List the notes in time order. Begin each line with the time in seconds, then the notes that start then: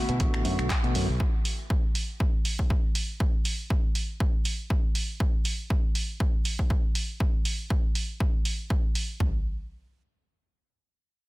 Already playing: D3 A3 B3 E4 F#4 E5
0.09 B2, closed hi-hat, tambourine
0.20 A1 D3 A3 B3 F#4, kick, closed hi-hat, tambourine
0.34 finger snap, closed hi-hat, tambourine
0.44 F#2 D3 A3 B3 F#4, open hi-hat
0.59 B1, finger snap, closed hi-hat, tambourine
0.70 kick, clap, closed hi-hat
0.83 B2 D3 A3 B3 F#4, closed hi-hat
0.95 F#2, open hi-hat
1.09 B1, tambourine
1.20 kick
1.34 tambourine
1.45 open hi-hat
1.59 tambourine
1.70 kick
1.83 tambourine
1.95 open hi-hat
2.09 tambourine
2.20 kick
2.35 tambourine
2.45 open hi-hat
2.58 kick, tambourine
2.70 kick, tambourine
2.85 tambourine
2.95 open hi-hat
3.09 tambourine
3.20 kick
3.34 tambourine
3.45 open hi-hat
3.60 tambourine
3.70 kick
3.84 tambourine
3.95 open hi-hat
4.10 tambourine
4.20 kick
4.34 tambourine
4.45 open hi-hat
4.59 tambourine
4.70 kick
4.84 tambourine
4.95 open hi-hat
5.09 tambourine
5.20 kick
5.45 open hi-hat
5.70 kick
5.95 open hi-hat
6.20 kick
6.45 open hi-hat
6.59 kick
6.70 kick
6.95 open hi-hat
7.20 kick
7.45 open hi-hat
7.70 kick
7.95 open hi-hat
8.20 kick
8.45 open hi-hat
8.70 kick
8.95 open hi-hat
9.20 kick, floor tom